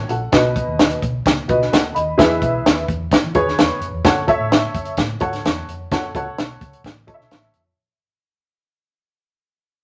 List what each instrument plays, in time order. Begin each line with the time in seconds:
Already playing: upright piano F#4
0.09 fingered electric bass A#1, upright piano A4 F#5, closed hi-hat
0.32 fingered electric bass B1, upright piano B2 F#4 B4 D#5, kick, snare, closed hi-hat
0.56 kick, closed hi-hat
0.67 fingered electric bass D#2
0.79 snare, closed hi-hat
0.90 closed hi-hat
1.02 fingered electric bass B1, kick, closed hi-hat
1.26 fingered electric bass C#2, kick, snare, closed hi-hat
1.48 fingered electric bass B1, upright piano F#4 B4 D#5, kick, closed hi-hat
1.62 snare
1.72 fingered electric bass D2, upright piano A4 F#5, snare, closed hi-hat
1.95 fingered electric bass D#2, upright piano D#5 B5, closed hi-hat
2.18 fingered electric bass E2, upright piano E3 G#4 B4 E5, kick, snare, closed hi-hat
2.42 fingered electric bass B1, kick, closed hi-hat
2.66 fingered electric bass D#2, snare, closed hi-hat
2.88 fingered electric bass E2, kick, closed hi-hat
3.11 kick, snare, closed hi-hat
3.24 fingered electric bass E3
3.34 fingered electric bass E2, upright piano G#4 B4 C#5, kick, closed hi-hat
3.46 fingered electric bass D#2, snare
3.58 fingered electric bass E2, snare, closed hi-hat
3.81 fingered electric bass F#2, closed hi-hat
3.93 fingered electric bass E2
4.04 fingered electric bass F#2, upright piano A4 C#5 F#5, kick, snare, closed hi-hat
4.27 upright piano A4 C#5 E5, kick, closed hi-hat
4.39 fingered electric bass A2
4.52 snare, closed hi-hat
4.75 fingered electric bass F#2, kick, closed hi-hat
4.85 closed hi-hat
4.97 fingered electric bass A2, kick, snare, closed hi-hat
5.20 fingered electric bass G#2, upright piano A4 C#5 F#5, kick, closed hi-hat
5.33 snare, closed hi-hat
5.45 fingered electric bass E2, snare, closed hi-hat
5.68 fingered electric bass F2, closed hi-hat
5.92 fingered electric bass F#2, upright piano A4 C#5 F#5, kick, snare, closed hi-hat
6.15 fingered electric bass C#2, upright piano A4 C#5 F#5, kick, closed hi-hat
6.38 fingered electric bass B1, snare, closed hi-hat
6.61 fingered electric bass C#2, kick, closed hi-hat
6.73 closed hi-hat
6.84 fingered electric bass A1, kick, snare, closed hi-hat
7.07 upright piano A4 C#5 D#5, kick, closed hi-hat
7.14 upright piano E5
7.20 fingered electric bass B1, snare
7.31 fingered electric bass A1, snare, closed hi-hat
7.54 fingered electric bass F2, closed hi-hat